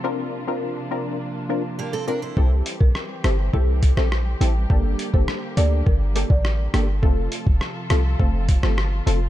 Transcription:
<<
  \new Staff \with { instrumentName = "Marimba" } { \time 4/4 \key g \dorian \tempo 4 = 103 r1 | r8. bes'8 r16 c''8 a'16 r8 c''16 r4 | r8. c''8 r16 d''8 bes'16 r8 d''16 r4 | r1 | }
  \new Staff \with { instrumentName = "Steel-string acoustic guitar" } { \time 4/4 \key g \dorian r2. <bes g'>16 <c' a'>16 <d' bes'>16 <e' c''>16~ | <e' c''>16 r2. r8. | r1 | r1 | }
  \new Staff \with { instrumentName = "Synth stab" } { \time 4/4 \key g \dorian <c' d' f' bes'>8. <c' d' f' bes'>8. <c' d' f' bes'>8 r8 <c' d' f' bes'>16 r8. <c' d' f' bes'>16 r16 | <c' e' g' a'>4 r8 <c' e' g' a'>16 r16 <c' e' g' a'>8. <c' e' g' a'>16 r8 <c' e' g' a'>16 r16 | <bes d' g' a'>8. <bes d' g' a'>8. <bes d' g' a'>8 r8 <bes d' g' a'>16 r8. <bes d' g' a'>16 r16 | <a c' f' a'>4 r8 <a c' f' a'>16 r16 <a c' f' a'>8. <a c' f' a'>16 r8 <a c' f' a'>16 r16 | }
  \new Staff \with { instrumentName = "String section" } { \time 4/4 \key g \dorian << { <f bes>1 | <g g'>1~ | <g g'>1 | <f a'>1 | } \\ { <c d' f'>1 | <e c'>1 | <d bes>1 | <c f'>1 | } >> }
  \new Staff \with { instrumentName = "808-style bass" } { \clef bass \time 4/4 \key g \dorian r1 | c,8 r16 bes,,16 r8 g,,8 c,8. bes,,8. a,,8 | g,,8 r16 g,,16 r8 d,8 g,,8. a,,8. g,,8 | f,,8 r16 e,,16 r8 c,8 f,,8. g,,8. f,,8 | }
  \new DrumStaff \with { instrumentName = "Drums" } \drummode { \time 4/4 r4 r4 r4 r4 | bd8 hh16 bd16 ss8 <hh ss>8 bd8 <hh bd>16 ss16 ss8 hh8 | bd8 hh16 bd16 ss8 hh8 bd8 hh16 bd16 ss8 <hh ss>8 | bd8 hh16 bd16 ss8 <hh ss>8 bd8 <hh bd>16 ss16 ss8 hh8 | }
>>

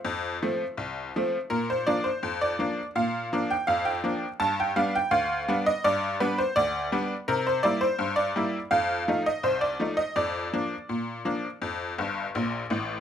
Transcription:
<<
  \new Staff \with { instrumentName = "Honky-tonk piano" } { \time 2/4 \key f \major \tempo 4 = 83 <f' c'' f''>4. r8 | \key bes \major bes'16 c''16 d''16 c''8 d''8. | f''8. g''16 f''16 g''8. | a''16 g''16 f''16 g''16 f''8. ees''16 |
d''8 b'16 c''16 d''4 | bes'16 c''16 d''16 c''8 d''8. | f''8. ees''16 c''16 d''8 ees''16 | d''2~ |
d''4 r4 | }
  \new Staff \with { instrumentName = "Honky-tonk piano" } { \clef bass \time 2/4 \key f \major f,8 <f a c'>8 c,8 <f a c'>8 | \key bes \major bes,8 <f bes d'>8 f,8 <f bes d'>8 | bes,8 <f bes d'>8 f,8 <f bes d'>8 | g,8 <g b d'>8 d,8 <g b d'>8 |
g,8 <g b d'>8 d,8 <g b d'>8 | c8 <g bes e'>8 g,8 <g bes e'>8 | f,8 <f a ees'>8 c,8 <f a ees'>8 | f,8 <f bes d'>8 bes,8 <f bes d'>8 |
f,8 <g,, g,>8 <bes,, bes,>8 <a,, a,>8 | }
>>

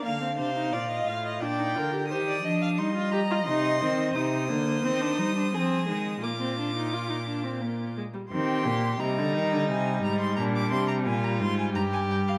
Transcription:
<<
  \new Staff \with { instrumentName = "Violin" } { \time 3/4 \key c \minor \tempo 4 = 87 f''2 g''4 | ees'''4 c'''8 bes''8 c'''4 | \key bes \mixolydian ees'''2. | d'''2~ d'''8 r8 |
c'''4 bes''4 aes''8 bes''16 c'''16 | bes''16 d'''16 c'''16 bes''16 aes''16 bes''16 c'''16 aes''16 bes''16 aes''16 g''16 f''16 | }
  \new Staff \with { instrumentName = "Violin" } { \time 3/4 \key c \minor f''8 c''8 d''16 ees''16 f''16 ees''16 d''8 bes'8 | c''16 d''16 ees''16 f''16 ees''2 | \key bes \mixolydian c''2 aes'4 | f'2~ f'8 r8 |
g'4 ees'2 | d'4 f'4 g'4 | }
  \new Staff \with { instrumentName = "Viola" } { \time 3/4 \key c \minor bes16 c'16 d'16 ees'16 f'4 d'16 ees'16 f'16 g'16 | g'8 d'8 ees'16 f'16 g'16 f'16 ees'8 c'8 | \key bes \mixolydian ees'8 bes8 c'16 d'16 ees'16 d'16 c'8 aes8 | bes16 c'16 d'16 ees'16 f'16 ees'16 d'16 c'16 bes8 aes16 g16 |
c'8 bes8 g2~ | g2. | }
  \new Staff \with { instrumentName = "Cello" } { \clef bass \time 3/4 \key c \minor d8 c8 bes,8 a,8 bes,8 d8 | ees8 f8 g4 c8 ees8 | \key bes \mixolydian c8 d8 ees8 g8 f8 ees8 | bes,2~ bes,8 r8 |
ees8 bes,8 c16 d16 ees16 d16 c8 aes,8 | bes,8 c8 bes,8 aes,8 g,4 | }
>>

